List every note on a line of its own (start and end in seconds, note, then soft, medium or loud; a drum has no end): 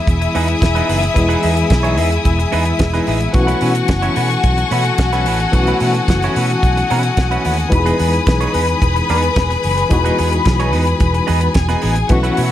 0.00 1.11 E3 medium
0.00 1.11 G#3 medium
0.00 1.12 B3 medium
0.00 1.12 E4 medium
0.00 3.31 E4 medium
0.00 1.15 G#4 medium
0.00 3.30 G#4 medium
0.00 3.31 E5 medium
0.00 12.06 G#5 medium
0.00 3.30 D#6 medium
0.07 0.26 E1 loud
0.07 kick loud
0.07 closed hi-hat medium
0.21 muted clean electric guitar stroke soft
0.21 closed hi-hat soft
0.35 0.53 E2 medium
0.35 0.54 B3 medium
0.35 0.48 D#4 medium
0.35 0.48 G#4 medium
0.35 0.48 B4 loud
0.35 open hi-hat medium
0.48 muted clean electric guitar stroke soft
0.48 closed hi-hat soft
0.62 0.80 E1 medium
0.62 muted clean electric guitar stroke soft
0.62 kick loud
0.62 snare loud
0.62 closed hi-hat medium
0.75 0.88 B3 medium
0.75 0.88 D#4 medium
0.75 0.88 G#4 medium
0.75 0.88 B4 medium
0.75 closed hi-hat soft
0.89 1.08 F#1 medium
0.89 1.04 B3 medium
0.89 1.02 D#4 medium
0.89 1.02 G#4 medium
0.89 1.01 B4 medium
0.89 open hi-hat medium
1.02 muted clean electric guitar stroke soft
1.02 closed hi-hat soft
1.14 1.35 E1 loud
1.14 2.76 E3 medium
1.14 2.76 G#3 medium
1.14 2.77 B3 medium
1.14 2.77 E4 medium
1.14 2.77 G#4 medium
1.14 muted clean electric guitar stroke soft
1.14 kick loud
1.14 closed hi-hat medium
1.29 1.41 B3 medium
1.29 1.41 D#4 medium
1.29 1.42 G#4 medium
1.29 1.42 B4 medium
1.29 closed hi-hat soft
1.42 1.62 E2 medium
1.42 1.58 B3 medium
1.42 1.56 D#4 medium
1.42 1.55 G#4 medium
1.42 1.55 B4 medium
1.42 open hi-hat medium
1.56 muted clean electric guitar stroke soft
1.56 closed hi-hat soft
1.70 1.99 B1 medium
1.70 muted clean electric guitar stroke soft
1.70 kick loud
1.70 snare loud
1.70 closed hi-hat medium
1.83 1.96 B3 medium
1.83 1.96 D#4 medium
1.83 1.97 G#4 medium
1.83 1.98 C#5 medium
1.83 closed hi-hat soft
1.97 2.17 E2 medium
1.97 2.13 B3 medium
1.97 2.11 D#4 medium
1.97 2.10 G#4 medium
1.97 2.10 B4 medium
1.97 open hi-hat medium
2.11 muted clean electric guitar stroke soft
2.11 closed hi-hat soft
2.25 2.44 E1 loud
2.25 kick medium
2.25 closed hi-hat medium
2.39 muted clean electric guitar stroke soft
2.39 closed hi-hat soft
2.52 2.71 E2 medium
2.52 2.72 B3 medium
2.52 2.65 D#4 medium
2.52 2.65 G#4 medium
2.52 2.64 B4 medium
2.52 open hi-hat medium
2.65 muted clean electric guitar stroke soft
2.65 closed hi-hat medium
2.79 2.99 E1 medium
2.79 3.31 E3 medium
2.79 3.34 G#3 soft
2.79 3.32 B3 medium
2.79 3.35 E4 medium
2.79 3.35 G#4 medium
2.79 muted clean electric guitar stroke soft
2.79 kick loud
2.79 snare loud
2.79 closed hi-hat medium
2.94 3.06 B3 medium
2.94 3.06 D#4 medium
2.94 3.07 G#4 medium
2.94 3.07 B4 medium
2.94 snare soft
2.94 closed hi-hat soft
3.07 3.26 A1 medium
3.07 3.22 B3 medium
3.07 3.20 D#4 medium
3.07 3.19 G#4 medium
3.07 3.19 B4 medium
3.07 open hi-hat medium
3.20 muted clean electric guitar stroke soft
3.20 closed hi-hat soft
3.33 3.53 B1 loud
3.33 5.48 E3 medium
3.33 5.49 A3 medium
3.33 5.49 B3 medium
3.33 5.49 C#4 medium
3.33 7.68 F#4 medium
3.33 5.50 F#4 medium
3.33 7.68 A4 medium
3.33 7.68 F#5 medium
3.33 5.51 C#6 loud
3.33 muted clean electric guitar stroke soft
3.33 kick loud
3.33 closed hi-hat medium
3.47 3.60 A3 medium
3.47 3.60 C#4 medium
3.47 3.60 E4 medium
3.47 3.61 B4 medium
3.47 closed hi-hat soft
3.61 3.80 B2 medium
3.61 3.77 A3 medium
3.61 3.75 C#4 medium
3.61 3.74 E4 medium
3.61 3.74 B4 medium
3.61 open hi-hat medium
3.75 muted clean electric guitar stroke soft
3.75 closed hi-hat soft
3.88 4.08 F#1 medium
3.88 muted clean electric guitar stroke soft
3.88 kick loud
3.88 snare loud
3.88 closed hi-hat medium
4.02 4.15 A3 medium
4.02 4.15 C#4 medium
4.02 4.16 E4 medium
4.02 4.17 C#5 medium
4.02 closed hi-hat soft
4.16 4.35 B2 loud
4.16 4.31 A3 medium
4.16 4.29 C#4 medium
4.16 4.29 E4 medium
4.16 4.29 B4 medium
4.16 open hi-hat medium
4.31 closed hi-hat soft
4.44 4.63 B1 loud
4.44 kick loud
4.44 closed hi-hat medium
4.58 muted clean electric guitar stroke soft
4.58 closed hi-hat soft
4.71 4.90 B2 loud
4.71 4.91 A3 medium
4.71 4.85 C#4 medium
4.71 4.85 E4 medium
4.71 4.84 B4 medium
4.71 open hi-hat medium
4.84 muted clean electric guitar stroke soft
4.84 closed hi-hat soft
4.98 5.27 B1 medium
4.98 muted clean electric guitar stroke soft
4.98 kick medium
4.98 snare loud
4.98 closed hi-hat medium
5.13 5.25 A3 medium
5.13 5.26 C#4 medium
5.13 5.26 E4 medium
5.13 5.27 B4 medium
5.13 snare soft
5.13 closed hi-hat soft
5.26 5.45 A1 medium
5.26 5.41 A3 medium
5.26 5.40 C#4 medium
5.26 5.40 E4 medium
5.26 5.40 B4 medium
5.26 open hi-hat medium
5.40 muted clean electric guitar stroke soft
5.40 closed hi-hat soft
5.52 5.72 B1 loud
5.52 7.67 E3 medium
5.52 7.68 A3 medium
5.52 7.68 B3 medium
5.52 7.69 C#4 medium
5.52 7.69 F#4 medium
5.52 12.06 D#6 medium
5.52 muted clean electric guitar stroke soft
5.52 kick loud
5.52 closed hi-hat medium
5.67 5.81 A3 medium
5.67 5.81 C#4 medium
5.67 5.81 E4 medium
5.67 5.82 B4 medium
5.67 closed hi-hat soft
5.80 5.99 B2 medium
5.80 5.97 A3 medium
5.80 5.95 C#4 medium
5.80 5.95 E4 medium
5.80 5.94 B4 medium
5.80 open hi-hat medium
5.95 muted clean electric guitar stroke soft
5.95 closed hi-hat soft
6.08 6.27 F#1 medium
6.08 muted clean electric guitar stroke soft
6.08 kick loud
6.08 snare loud
6.08 closed hi-hat medium
6.22 6.35 A3 medium
6.22 6.36 C#4 medium
6.22 6.36 E4 medium
6.22 6.37 C#5 medium
6.22 closed hi-hat soft
6.36 6.54 B2 loud
6.36 6.51 A3 medium
6.36 6.50 C#4 medium
6.36 6.50 E4 medium
6.36 6.50 B4 medium
6.36 open hi-hat medium
6.50 muted clean electric guitar stroke soft
6.50 closed hi-hat soft
6.63 6.82 B1 loud
6.63 kick medium
6.63 closed hi-hat medium
6.77 muted clean electric guitar stroke soft
6.77 closed hi-hat soft
6.90 7.09 B2 medium
6.90 7.10 A3 medium
6.90 7.03 C#4 medium
6.90 7.03 E4 medium
6.90 7.03 B4 medium
6.90 open hi-hat medium
7.03 muted clean electric guitar stroke soft
7.03 closed hi-hat soft
7.17 7.36 B1 medium
7.17 muted clean electric guitar stroke soft
7.17 kick loud
7.17 snare loud
7.17 closed hi-hat medium
7.31 7.43 A3 medium
7.31 7.44 C#4 medium
7.31 7.44 E4 medium
7.31 7.45 B4 medium
7.31 closed hi-hat soft
7.44 7.64 D#2 medium
7.44 7.60 A3 medium
7.44 7.58 C#4 medium
7.44 7.58 E4 medium
7.44 7.57 B4 medium
7.44 open hi-hat medium
7.58 muted clean electric guitar stroke soft
7.58 closed hi-hat soft
7.70 7.91 E1 loud
7.70 9.86 E3 medium
7.70 9.86 G#3 medium
7.70 9.87 B3 medium
7.70 9.87 D#4 medium
7.70 7.79 F#4 medium
7.70 12.07 G#4 medium
7.70 11.52 B4 medium
7.70 11.52 B5 medium
7.70 muted clean electric guitar stroke soft
7.70 kick loud
7.70 closed hi-hat medium
7.79 9.91 G#4 medium
7.86 7.98 B3 medium
7.86 7.98 D#4 medium
7.86 7.99 G#4 medium
7.86 7.99 B4 medium
7.86 closed hi-hat soft
7.99 8.18 E2 loud
7.99 8.14 B3 medium
7.99 8.14 D#4 medium
7.99 8.13 G#4 medium
7.99 8.13 B4 medium
7.99 open hi-hat medium
8.13 muted clean electric guitar stroke soft
8.13 closed hi-hat soft
8.27 8.46 B1 medium
8.27 muted clean electric guitar stroke soft
8.27 kick loud
8.27 snare loud
8.27 closed hi-hat medium
8.41 8.52 B3 medium
8.41 8.53 D#4 medium
8.41 8.53 G#4 medium
8.41 8.54 C#5 medium
8.41 closed hi-hat soft
8.54 8.73 E2 medium
8.54 8.69 B3 medium
8.54 8.68 D#4 medium
8.54 8.67 G#4 medium
8.54 8.67 B4 medium
8.54 open hi-hat medium
8.68 muted clean electric guitar stroke soft
8.68 closed hi-hat soft
8.82 9.00 E1 loud
8.82 kick loud
8.82 closed hi-hat medium
8.96 muted clean electric guitar stroke soft
8.96 closed hi-hat soft
9.09 9.28 E2 loud
9.09 9.30 B3 medium
9.09 9.23 D#4 medium
9.09 9.22 G#4 medium
9.09 9.22 B4 medium
9.09 open hi-hat medium
9.23 muted clean electric guitar stroke soft
9.23 closed hi-hat soft
9.36 9.55 E1 medium
9.36 muted clean electric guitar stroke soft
9.36 kick loud
9.36 snare loud
9.36 closed hi-hat medium
9.50 muted clean electric guitar stroke soft
9.50 snare soft
9.50 closed hi-hat soft
9.63 9.83 F#1 medium
9.63 open hi-hat medium
9.77 muted clean electric guitar stroke soft
9.77 closed hi-hat soft
9.90 10.10 E1 loud
9.90 12.06 E3 medium
9.90 12.06 G#3 medium
9.90 12.06 B3 medium
9.90 12.07 D#4 medium
9.90 12.07 F#4 medium
9.90 muted clean electric guitar stroke soft
9.90 kick loud
9.90 closed hi-hat medium
10.05 10.17 B3 medium
10.05 10.17 D#4 medium
10.05 10.17 G#4 medium
10.05 10.18 B4 medium
10.05 closed hi-hat soft
10.18 10.38 E2 loud
10.18 10.33 B3 medium
10.18 10.31 D#4 medium
10.18 10.31 G#4 medium
10.18 10.31 B4 medium
10.18 open hi-hat medium
10.32 muted clean electric guitar stroke soft
10.32 closed hi-hat soft
10.45 10.75 B1 medium
10.45 muted clean electric guitar stroke soft
10.45 kick loud
10.45 snare loud
10.45 closed hi-hat medium
10.60 10.70 B3 medium
10.60 10.71 D#4 medium
10.60 10.71 G#4 medium
10.60 10.72 C#5 medium
10.60 closed hi-hat soft
10.72 10.93 E2 medium
10.72 10.88 B3 medium
10.72 10.86 D#4 medium
10.72 10.85 G#4 medium
10.72 10.85 B4 medium
10.72 open hi-hat medium
10.86 muted clean electric guitar stroke medium
10.86 closed hi-hat soft
11.00 11.19 E1 loud
11.00 kick loud
11.00 closed hi-hat medium
11.14 muted clean electric guitar stroke soft
11.14 closed hi-hat soft
11.27 11.47 E2 loud
11.27 11.47 B3 medium
11.27 11.40 D#4 medium
11.27 11.40 G#4 medium
11.27 11.40 B4 medium
11.27 open hi-hat medium
11.41 muted clean electric guitar stroke soft
11.41 closed hi-hat soft
11.54 11.74 E1 loud
11.54 12.09 G#4 medium
11.54 12.10 G#5 medium
11.54 muted clean electric guitar stroke soft
11.54 kick loud
11.54 snare loud
11.54 closed hi-hat medium
11.69 11.81 B3 medium
11.69 11.81 D#4 medium
11.69 11.82 G#4 medium
11.69 11.82 B4 loud
11.69 snare soft
11.69 closed hi-hat soft
11.82 12.02 A1 medium
11.82 11.98 B3 medium
11.82 11.96 D#4 medium
11.82 11.95 G#4 medium
11.82 11.95 B4 medium
11.82 open hi-hat medium
11.96 muted clean electric guitar stroke soft
11.96 closed hi-hat soft
12.09 12.29 B1 loud
12.09 12.52 E3 medium
12.09 12.52 A3 medium
12.09 12.52 B3 medium
12.09 12.52 C#4 medium
12.09 12.52 F#4 medium
12.09 12.52 A4 medium
12.09 12.52 E5 medium
12.09 12.52 F#5 medium
12.09 12.52 C#6 medium
12.09 muted clean electric guitar stroke soft
12.09 kick loud
12.09 closed hi-hat medium
12.23 12.36 A3 medium
12.23 12.36 C#4 medium
12.23 12.37 E4 medium
12.23 12.37 B4 medium
12.23 closed hi-hat soft
12.37 12.52 B2 medium
12.37 12.52 A3 medium
12.37 12.51 C#4 medium
12.37 12.51 E4 medium
12.37 12.50 B4 medium
12.37 open hi-hat medium